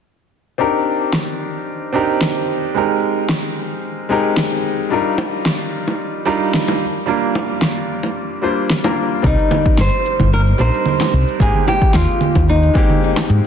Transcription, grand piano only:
0.58 C4 D4 D#4 G4 A#4
1.93 C4 D4 D#4 G4 A#4
2.74 G#3 C4 D#4 G4 A#4
4.09 G#3 C4 D#4 G4 A#4
4.90 G3 D4 D#4 F4 A#4
6.25 G3 D4 D#4 F4 A#4
7.06 G3 A#3 D4 F4 A#4
8.42 G3 A#3 D4 F4 C5
8.84 G3 A#3 D4 F4 A#4
9.22 G3 C4 D#4 A#4 D5
10.58 G3 C4 D4 D#4 A#4
11.39 G#3 A#3 C4 D#4 G4
12.74 G#3 A#3 C4 D#4 G4

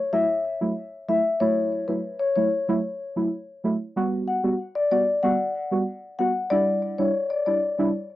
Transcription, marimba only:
0.13 E5
1.08 E5
1.40 C#5
1.88 B4
2.20 C#5
2.36 C#5
4.28 F#5
4.75 D5
4.91 D5
5.23 F#5
6.19 F#5
6.50 D5
6.98 C#5
7.30 D5
7.46 D5

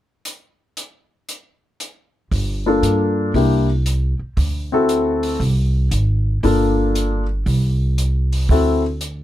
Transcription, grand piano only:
2.66 A#3 D4 F4 A4
3.35 A#3 D4 E4 G4
4.72 C4 E4 F#4 A4
6.43 A#3 D4 F4 A4
8.51 C4 E4 F#4 A4

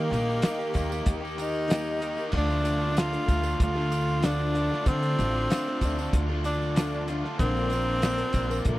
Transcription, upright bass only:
0.12 A#1
0.76 D#2
1.06 D#2
2.34 D2
3.28 D2
3.60 D2
4.86 D3
5.19 A1
5.82 D2
6.13 D2
7.40 A#1
8.34 A#1
8.66 A#1

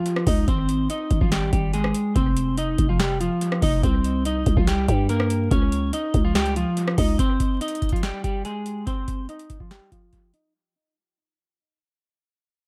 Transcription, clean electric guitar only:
Already playing: F3 F4
0.27 D#4 D#5
0.48 C4 C5
0.90 D#4 D#5
1.21 F3 F4
1.32 G3 G4
1.53 G3 G4
1.74 G#3 G#4
2.16 C4 C5
2.58 D#4 D#5
2.89 F3 F4
3.00 G3 G4
3.20 F3 F4
3.62 D#4 D#5
3.83 C4 C5
4.25 D#4 D#5
4.57 F3 F4
4.67 G3 G4
4.88 G3 G4
5.09 A#3 A#4
5.51 C#4 C#5
5.93 D#4 D#5
6.25 F3 F4
6.35 G3 G4
6.56 F3 F4
6.98 D#4 D#5
7.19 C4 C5
7.61 D#4 D#5
7.93 F3 F4
8.03 G3 G4
8.24 G3 G4
8.45 G#3 G#4
8.87 C4 C5
9.29 D#4 D#5
9.60 F3 F4
9.71 G3 G4
9.92 F3 F4
10.34 D#4 D#5

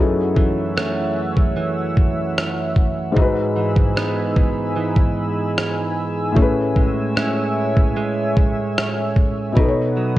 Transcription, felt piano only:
Already playing: F#3 C#4 D#4 E4 B4
0.00 G#4 A4
3.12 G#2 G#3
3.17 D#4 F#4
3.22 B4
6.32 A2 A3
6.37 C#4 G#4
6.42 B4
9.52 B2 B3
9.57 D#4 A4
9.62 B4
9.68 C#5

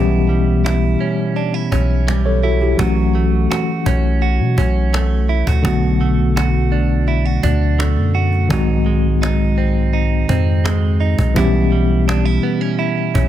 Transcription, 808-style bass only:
Already playing: B1
1.72 B1
2.79 B1
3.86 B1
4.40 B2
4.58 B1
5.47 D2
5.65 B1
7.43 D2
7.97 F#2
8.50 B1
10.29 F2
11.19 B1
11.36 B1
13.15 B1

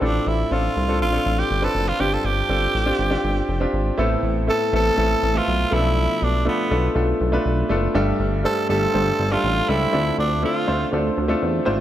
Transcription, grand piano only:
0.01 A2 C4 D4 F4 A4
0.51 C4 D4 F4 A4
0.88 C4 D4 F4 A4
1.13 C4 D4 F4 A4
1.62 C4 D4 F4 B4
1.99 G2 C4 D4 F4 G4
2.49 C4 D4 F4 A4
2.86 C4 D4 F4 G4
3.10 C4 D4 F4 G4
3.60 C4 D4 F4 G4
3.98 A2 A3 B3 C4 E4 A4
4.47 A3 B3 C4 E4 A4
4.73 A3 B3 C4 E4 A4
4.97 A3 B3 C4 E4 A4
5.34 A3 B3 C4 A4 E5
5.71 B2 F3 A3 B3 C#4 A4
5.77 D4
6.45 A3 B3 D4 F4 A4
6.70 A3 B3 D4 F4 A4
6.95 A3 B3 D4 F4 A4
7.32 A3 B3 D4 F4 B4
7.69 A3 B3 D4 F4 A4
7.94 G2 G3 A3 D4 G4 A4
8.44 G3 A3 D4 G4 C5
8.69 G3 A3 D4 G4 A4
8.93 G3 A3 D4 G4 C5
9.31 G3 A3 D4 G4 A4
9.68 G3 A3 D4 G4 A4
9.93 D3 A3 C4 D4 F4 A4
10.43 A3 C4 D4 F4 A4
10.67 A3 C4 D4 F4 C5
10.92 A3 C4 D4 F4 A4
11.28 A3 C4 D4 F4 A4
11.65 A3 C4 D4 F4 C5

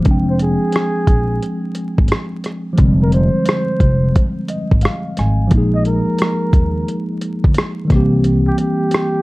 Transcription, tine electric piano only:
0.00 F3 G#3
0.06 C4 D4
0.11 G5
2.73 F3 G#3
2.79 D3 C4
2.84 G3
4.50 D#5
4.83 F5
5.19 G#5
5.47 F3 G#3
5.53 A#3 D#4
5.58 G#4
7.85 D#3 G3
7.90 E3 A#3 C4
7.96 G4

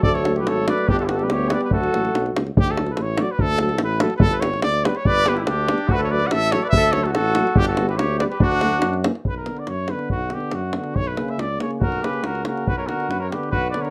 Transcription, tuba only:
0.06 D2
0.48 G#1
0.89 G1
1.31 D2
1.72 D2
1.93 A1
2.14 B1
2.34 C#2
2.55 D2
2.97 A1
3.39 D2
3.81 A1
4.22 G1
4.64 D2
5.07 G1
5.48 D2
5.90 D2
6.32 A1
6.74 D2
7.17 A1
7.58 G1
8.01 D2
8.42 D2
8.84 F#2
9.25 B1
9.69 F#2
10.11 B1
10.54 F#2
10.95 B1
11.37 C#2
11.80 B1
12.22 C#2
12.65 B1
13.09 F#2
13.51 B1

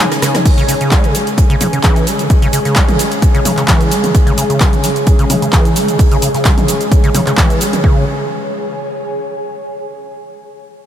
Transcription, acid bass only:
0.22 C#3
0.35 C#4
0.58 C#3
0.68 C#3
0.81 C#3
0.92 G#3
1.04 C#3
1.15 G#3
1.50 C#3
1.61 C#3
1.73 C#3
1.84 E3
2.07 G#3
2.19 C#3
2.42 C#3
2.53 C#3
2.65 C#3
2.76 G#3
2.88 C#3
2.99 G#3
3.35 C#3
3.45 C#3
3.58 C#3
3.68 E3
3.91 G#3
4.04 C#3
4.27 C#3
4.38 C#3
4.50 C#3
4.61 G#3
4.73 C#3
4.84 G#3
5.19 C#3
5.30 C#3
5.42 C#3
5.53 E3
5.76 G#3
5.88 C#3
6.12 C#3
6.22 C#3
6.35 C#3
6.45 G#3
6.58 C#3
6.68 G#3
7.04 C#3
7.15 C#3
7.27 C#3
7.38 E3
7.61 G#3
7.73 C#3
7.84 C#3

